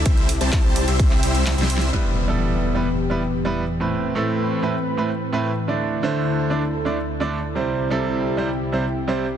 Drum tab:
RD |x-----x-----x-----x-----x-----x-----x-----x-----|------------------------------------------------|------------------------------------------------|------------------------------------------------|
HH |x--x--o--x--x-----o--x--x-----o--x--x--x--o--x--|------------------------------------------------|------------------------------------------------|------------------------------------------------|
CP |------------x--------------x--------x-----------|------------------------------------------------|------------------------------------------------|------------------------------------------------|
SD |------------------------------------o---o---o---|------------------------------------------------|------------------------------------------------|------------------------------------------------|
BD |o-----------o-----------o-----------------------|------------------------------------------------|------------------------------------------------|------------------------------------------------|

RD |------------------------------------------------|
HH |------------------------------------------------|
CP |------------------------------------------------|
SD |------------------------------------------------|
BD |------------------------------------------------|